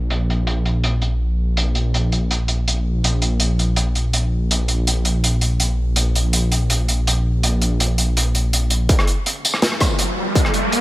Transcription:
Already playing: A#1
0.10 closed hi-hat
0.30 closed hi-hat
0.47 closed hi-hat
0.66 closed hi-hat
0.84 closed hi-hat
1.02 closed hi-hat
1.57 closed hi-hat
1.75 closed hi-hat
1.94 closed hi-hat
2.12 closed hi-hat
2.31 closed hi-hat
2.48 closed hi-hat
2.68 closed hi-hat
3.03 A#1, closed hi-hat
3.22 closed hi-hat
3.40 closed hi-hat
3.59 closed hi-hat
3.76 closed hi-hat
3.95 closed hi-hat
4.13 closed hi-hat
4.51 closed hi-hat
4.68 closed hi-hat
4.87 closed hi-hat
5.05 closed hi-hat
5.24 closed hi-hat
5.41 closed hi-hat
5.60 closed hi-hat
5.96 closed hi-hat
6.15 closed hi-hat
6.33 closed hi-hat
6.52 closed hi-hat
6.70 closed hi-hat
6.88 closed hi-hat
7.07 closed hi-hat
7.43 closed hi-hat
7.62 closed hi-hat
7.80 closed hi-hat
7.98 closed hi-hat
8.17 closed hi-hat
8.35 closed hi-hat
8.53 closed hi-hat
8.70 closed hi-hat
8.89 kick, closed hi-hat, riser
8.99 cross-stick
9.07 closed hi-hat
9.26 closed hi-hat
9.45 closed hi-hat, tambourine
9.54 cross-stick
9.62 snare, closed hi-hat
9.72 cross-stick
9.80 kick, cross-stick, closed hi-hat, tambourine
9.99 closed hi-hat
10.35 kick, closed hi-hat
10.45 cross-stick
10.54 closed hi-hat
10.72 closed hi-hat

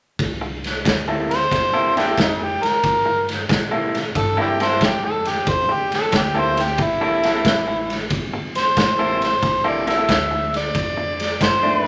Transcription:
0.19 C2, kick, ride
0.41 muted clean electric guitar stroke
0.64 snare, ride
0.85 D2, muted clean electric guitar stroke, kick, snare, ride
1.08 C3 A#3 E4 A4
1.31 C5, snare, ride
1.51 E2, muted clean electric guitar stroke, kick, snare, ride
1.74 C3 A#3 E4 A4
1.96 C3 A#3 D4 E4 G4 A4, snare, ride
2.07 C3 A#3 E4 A4
2.18 F2 D#4, kick, snare, ride
2.39 muted clean electric guitar stroke
2.44 G4
2.63 A#4, muted upright bass stroke, snare, ride
2.84 G2, kick, ride
3.06 muted clean electric guitar stroke
3.29 snare, ride
3.49 A#2, muted clean electric guitar stroke, kick, snare, ride
3.71 C3 A#3 E4 A4
3.95 snare, ride
4.15 G2 A4, muted clean electric guitar stroke, kick, ride
4.37 C3 A#3 E4 A4
4.41 D4 E4 G4
4.60 C3 A#3 E4 A4 C5, snare, ride
4.70 C3 A#3 E4 A4
4.81 F2, kick, snare, ride
4.85 G4
5.04 A4, muted clean electric guitar stroke
5.25 G4, snare, ride
5.47 E2 C5, kick, ride
5.69 G4, muted clean electric guitar stroke
5.92 A4, snare, ride
6.12 D2, muted clean electric guitar stroke, kick, snare, ride
6.17 G4
6.35 C3 A#3 E4 A4
6.40 C5
6.57 G4, snare, ride
6.78 A#1, muted clean electric guitar stroke, kick, ride
6.82 E4
7.01 C3 A#3 E4 A4
7.23 C3 A#3 E4 A4, snare, ride
7.34 C3 A#3 E4 A4
7.45 A1, kick, snare, ride
7.68 muted clean electric guitar stroke
7.90 snare, ride
8.10 G1, kick, ride
8.33 muted clean electric guitar stroke
8.55 C5, snare, ride
8.77 A1, muted clean electric guitar stroke, kick, snare, ride
8.99 C3 A#3 E4 A4
9.22 C5, snare, ride
9.42 A#1, muted clean electric guitar stroke, kick, ride
9.64 C3 A#3 E4 A4 D5
9.87 C3 A#3 E4 A4 E5, snare, ride
9.97 C3 A#3 E4 A4
10.09 D2, kick, snare, ride
10.31 muted clean electric guitar stroke
10.54 D5, snare, ride
10.75 F2, kick, ride
10.97 muted clean electric guitar stroke
11.20 snare, ride
11.41 G2 C5, muted clean electric guitar stroke, kick, snare, ride
11.63 F2 D#3 A3 D4

